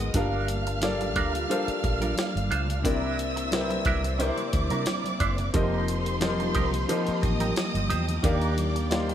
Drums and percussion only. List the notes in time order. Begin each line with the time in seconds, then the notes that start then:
0.14 kick, closed hi-hat, low conga
0.48 closed hi-hat
0.67 closed hi-hat
0.82 snare, closed hi-hat, muted conga, high conga
1.00 closed hi-hat, muted conga, high conga
1.16 kick, closed hi-hat
1.34 closed hi-hat, low conga
1.50 closed hi-hat, muted conga
1.68 closed hi-hat
1.84 kick, closed hi-hat
2.00 closed hi-hat, high conga
2.17 snare, closed hi-hat, muted conga, high conga
2.34 closed hi-hat, muted conga, high conga
2.52 closed hi-hat
2.67 closed hi-hat, low conga
2.83 kick, closed hi-hat, muted conga, low conga
3.02 muted conga
3.19 closed hi-hat
3.37 closed hi-hat
3.52 snare, closed hi-hat, muted conga, high conga
3.70 closed hi-hat, high conga
3.85 kick, closed hi-hat
4.03 closed hi-hat, low conga
4.19 closed hi-hat, muted conga
4.37 closed hi-hat, muted conga
4.53 kick, closed hi-hat
4.70 closed hi-hat, high conga
4.86 snare, closed hi-hat, muted conga, high conga
5.04 closed hi-hat, muted conga, high conga
5.20 kick, closed hi-hat
5.38 closed hi-hat, low conga
5.54 kick, closed hi-hat, low conga
5.88 closed hi-hat
6.06 closed hi-hat
6.21 snare, closed hi-hat, high conga
6.39 closed hi-hat, muted conga, high conga
6.55 kick, closed hi-hat
6.73 closed hi-hat, low conga
6.89 closed hi-hat
7.07 closed hi-hat
7.23 kick, closed hi-hat
7.40 closed hi-hat, high conga
7.56 snare, closed hi-hat, muted conga, high conga
7.74 closed hi-hat, muted conga, high conga
7.90 closed hi-hat
8.08 closed hi-hat, low conga
8.23 kick, closed hi-hat, muted conga, low conga
8.41 closed hi-hat
8.57 closed hi-hat, high conga
8.76 closed hi-hat
8.91 snare, closed hi-hat, muted conga, high conga
9.09 closed hi-hat, muted conga, high conga